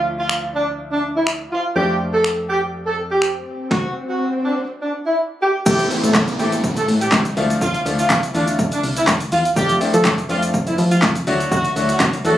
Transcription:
Already playing: D2 F3 A3 D4 E4
0.18 F4
0.29 finger snap
0.54 D4
0.91 D4
1.16 E4
1.27 finger snap
1.51 F4
1.75 F2 F3 A3 C4 D4 G4, swell
2.13 A4
2.24 finger snap
2.49 G4
2.86 A4
3.10 G4
3.22 finger snap
3.70 F#4, kick, snare
4.09 F#4
4.44 D4
4.81 D4
5.06 E4
5.42 G4
5.66 A1 E3 A3 C4 E4 G4 A4, kick, crash, downlifter, shaker
5.79 closed hi-hat, shaker
5.91 E3 A3 C4 E4 G4, open hi-hat, shaker
6.04 A2 A4, closed hi-hat, shaker
6.14 A1, kick, snare, clap, shaker
6.28 closed hi-hat, shaker
6.39 A1 E3 A3 C4 E4 G4 A4, open hi-hat, shaker
6.52 closed hi-hat, shaker
6.64 kick, shaker
6.77 A1 A4, closed hi-hat, shaker
6.88 A2, open hi-hat, shaker
7.01 G4, closed hi-hat, shaker
7.12 A1, kick, snare, clap, shaker
7.25 closed hi-hat, shaker
7.37 D2 F3 A3 D4 E4 F4, open hi-hat, shaker
7.50 closed hi-hat, shaker
7.61 D2 F4, kick, shaker
7.74 closed hi-hat, shaker
7.86 D2 F3 A3 D4 E4 F4, open hi-hat, shaker
7.99 F4, closed hi-hat, shaker
8.10 kick, snare, clap, shaker
8.23 closed hi-hat, shaker
8.34 E2 D3 A3 D4 E4 F4, open hi-hat, shaker
8.48 closed hi-hat, shaker
8.59 kick, shaker
8.72 D4, closed hi-hat, shaker
8.83 C2, open hi-hat, shaker
8.96 E4, closed hi-hat, shaker
9.07 D2, kick, snare, clap, shaker
9.20 closed hi-hat, shaker
9.32 E2 F4, open hi-hat, shaker
9.45 closed hi-hat, shaker
9.56 F2 F3 A3 C4 D4 F4 G4, kick, shaker
9.69 closed hi-hat, shaker
9.80 F3 A3 C4 D4 E4, open hi-hat, shaker
9.94 F3 A4, closed hi-hat, shaker
10.05 F2, kick, snare, clap, shaker
10.18 closed hi-hat, shaker
10.29 F2 F3 A3 C4 D4 F4, open hi-hat, shaker
10.43 closed hi-hat, shaker
10.54 kick, shaker
10.67 F2 E4, closed hi-hat, shaker
10.78 F3, open hi-hat, shaker
10.91 F4, closed hi-hat, shaker
11.02 F2, kick, snare, clap, shaker
11.15 closed hi-hat, shaker
11.27 D2 F#3 A3 D4 E4 F#4, open hi-hat, shaker
11.40 closed hi-hat, shaker
11.52 D2 F#4, kick, shaker
11.65 closed hi-hat, shaker
11.76 D2 F#3 A3 D4 E4 F#4, open hi-hat, shaker
11.89 F#4, closed hi-hat, shaker
12.00 kick, snare, clap, shaker
12.13 closed hi-hat, shaker
12.25 E2 F#3 A3 D4 E4 F#4 A4, open hi-hat, shaker

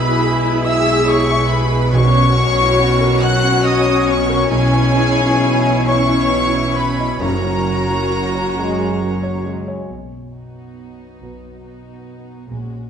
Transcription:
Already playing: B1 B2 G#3 E4 G#4 B4 E5 B5
0.01 F#4
0.23 G#4
0.45 B4
0.64 G#4 E5 E6
0.88 E4
1.08 G#4 C#5 C#6
1.31 E5
1.49 G#4 B4 B5
1.72 B4
1.92 B1 B2 F#3 C#4 F#4 C#5 C#6
2.16 C#4
2.38 F#4
2.59 E4
2.80 F#4
3.01 A#4
3.22 F#4 C#5 F#5 F#6
3.45 C#4
3.64 F#4 D#5 D#6
3.87 C#5
4.06 F#4 C#5 C#6
4.11 C#6
4.30 A#4
4.50 B1 B2 E3 E4 G#4 C#5 G#5
4.73 C#4
4.97 E4
5.18 D#4
5.42 E4
5.65 D#5
5.86 E4 C#5 C#6
6.11 C#4
6.33 E4
6.56 C#5
6.75 E4 B4 B5
6.99 D#5
7.20 F#1 F#2 F#3 C#4 F#4 A#4 C#5 A#5
7.44 C#4
7.68 F#4
7.89 E4
8.12 F#4
8.35 C#5
8.55 G#3 F#4
8.80 C#4
9.01 F#3 F#4
9.23 C#5
9.44 G#3 F#4
9.68 C#5
9.89 B1 B2
10.33 B3 D#4 F#4
11.20 B1 B2 F#4 B4
11.63 B3 D#4 F#4
12.50 A#1 A#2 G#3 C#4 F#4

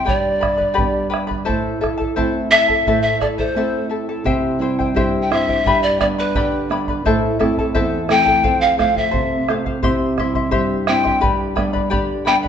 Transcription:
0.05 G2 G4 B4 D5 G5 B5, bombo low
0.40 B4 D5 G5 B5, bombo rim, bombo low
0.57 B4 D5 B5, bombo low
0.74 G3 G4 B4 D5 G5 B5
0.78 B3 D4, bombo low
1.10 B4 D5 G5 B5, bombo rim
1.27 B4 D5 B5, bombo low
1.45 A2 E4 A4 C5 E5 A5, bombo low
1.81 E4 A4 E5 A5, bombo rim, bombo low
1.98 E4 A4 A5, bombo low
2.16 A3 C4 E4 A4 C5 E5 A5, bombo low
2.51 E4 A4 E5 A5, bombo rim
2.68 E4 A4 A5, bombo low
2.86 A2 E4 A4 C5 E5 A5, bombo low
3.02 E5
3.20 E4 A4 D5 E5 A5, bombo rim, bombo low
3.38 E4 A4 C5 A5, bombo low
3.55 A3 C4 E4 A4 C5 E5 A5
3.89 E4 A4 E5 A5
4.09 E4 A4 A5
4.24 C3 E4 G4 C5 E5 G5, bombo low
4.59 G3 C4 E4 C5 E5 G5
4.79 E4 C5 G5, bombo low
4.94 G2 E4 G4 C5 E5 G5, bombo low
5.22 G5
5.30 G3 C4 E4 C5 E5 G5, bombo rim
5.48 E4 C5 G5, bombo low
5.64 G2 G4 B4 D5 G5 B5, bombo low
5.83 D5
5.99 G3 B3 D4 B4 D5 G5 B5, bombo rim, bombo low
6.19 B4 D5 B5
6.35 D3 G4 B4 D5 G5 B5, bombo low
6.69 G3 B3 D4 B4 D5 G5 B5, bombo rim
6.88 B4 D5 B5, bombo low
7.05 A2 E4 A4 C5 E5 A5, bombo low
7.39 A3 C4 E4 A4 E5 A5, bombo rim, bombo low
7.58 E4 A4 A5, bombo low
7.75 E2 E4 A4 C5 E5 A5, bombo low
8.09 A3 C4 E4 A4 E5 G5 A5, bombo rim
8.26 E4 A4 A5, bombo low
8.43 F2 A4 C5 F5, bombo low
8.61 F5
8.77 A3 C4 F4 A4 C5 F5, bombo rim, bombo low
8.95 C5 E5 F5, bombo low
9.11 C3 A4 C5, bombo low
9.49 A3 C4 F4 A4 C5 F5, bombo rim
9.66 C5 F5, bombo low
9.83 C3 E4 G4 C5 E5 C6, bombo low
10.18 G3 C4 E4 C5 E5 C6, bombo rim, bombo low
10.35 E4 E5 C6, bombo low
10.51 G2 E4 G4 C5 E5 C6, bombo low
10.87 G3 C4 E4 C5 E5 G5 C6, bombo rim
11.04 E4 E5 C6, bombo low
11.21 G2 G4 B4 D5 G5 B5, bombo low
11.56 G3 B3 D4 B4 D5 G5 B5, bombo rim, bombo low
11.73 B4 D5 B5, bombo low
11.90 D3 G4 B4 D5 G5 B5, bombo low
12.25 G3 B3 D4 B4 D5 G5 B5, bombo rim
12.43 B4 D5 B5, bombo low

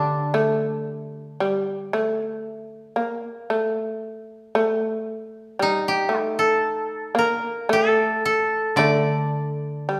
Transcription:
Already playing: D3 A3 D4 G4 A4
0.34 A3
1.40 G3
1.93 A3
2.96 A#3
3.50 A3
4.55 A3
5.59 G3 D#4
5.88 G4
6.09 A3
6.20 D#4
6.39 A4
7.15 A#3 A#4
7.69 A3 A4
8.25 A4
8.76 D3 A3 D5
9.89 G3

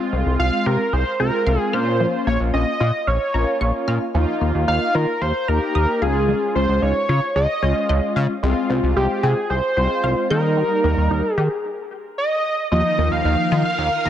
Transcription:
Already playing: G#3 C4 F4
0.13 C2 C4
0.26 C2
0.39 C2 F4 F5
0.66 C3 G4 A#4
0.93 C2 G#4 C5
1.20 C2 G#3 C4 F4 A#4 C5
1.47 C2 F5
1.59 G#4
1.73 A#2 A#3 C#4 F4 C5 F6
2.00 F3
2.27 A#1 A#3 C#5
2.40 A#1
2.53 A#1 C#4 D#5
2.80 A#2 F4
3.07 A#1 C#5 F5
3.34 A#1 A#3 C#4 F4 A#5
3.61 A#1 C#6
3.88 A#2 F6
4.14 D#2 F3 A#3 D#4 F4
4.41 D#2 A#3
4.55 D#2
4.68 D#2 D#4 F5
4.95 D#3 F4 A#4
5.21 D#2 C5 F5
5.48 D#2 A#3 D#4 G4 A#4 A#5
5.75 D#2 D#6
6.02 C#2 G#3 C#4 F4 G#4 F5
6.29 G#3
6.55 C#2 C#4 C5
6.69 C#2
6.82 C#2 D#4 C#5
7.09 C#3 F4
7.36 C#2 G#4 D#5
7.63 C#2 G#3 C#4 F4 C#5
7.89 C#2 D#5
8.16 C#3 F5
8.43 C2 G#3 C4 F4
8.70 C2 C4
8.83 C2
8.96 C2 F4 G4
9.23 C3 G4 G#4
9.50 C2 G#4 C5
9.77 C2 G#3 C4 F4 C5
10.04 C2 F5
10.30 D#3 G3 A#3 D#4 A#4 G6
10.57 G3
10.84 D#2 A#3
10.97 D#2
11.11 D#2 D#4
11.34 D#3 G4 G#4
12.18 D#5
12.71 D#2 D#3 F3 A#3 D#4 F4 A#4 D#5
12.98 D#2 A#3
13.12 D#2 F5
13.25 D#2 D#4
13.52 D#3 F4
13.65 F5
13.79 D#2 F5
14.05 D#2 A#5

